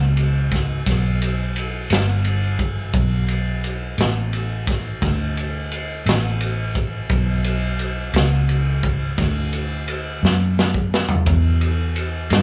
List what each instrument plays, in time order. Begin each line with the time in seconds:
Already playing: fingered electric bass C#2
0.17 ride
0.51 kick, snare, ride
0.86 fingered electric bass B1, kick, snare, ride
1.22 ride
1.56 ride
1.90 fingered electric bass G1, snare, ride
2.25 ride
2.59 kick, ride
2.93 fingered electric bass B1, kick, ride
3.28 ride
3.64 ride
3.98 fingered electric bass A1, snare, ride
4.33 ride
4.67 kick, snare, ride
5.02 fingered electric bass D2, kick, snare, ride
5.37 ride
5.72 ride
6.06 fingered electric bass A1, snare, ride
6.41 ride
6.75 kick, ride
7.10 fingered electric bass B1, kick, ride
7.44 ride
7.79 ride
8.13 fingered electric bass C#2, snare, ride
8.49 ride
8.83 kick, ride
9.18 fingered electric bass D2, kick, snare, ride
9.53 ride
9.88 ride
10.23 fingered electric bass F#2, snare
10.59 snare
10.74 kick
10.94 snare
11.09 floor tom
11.26 fingered electric bass E2, kick, ride
11.61 ride
11.96 ride
12.30 fingered electric bass G2, snare, ride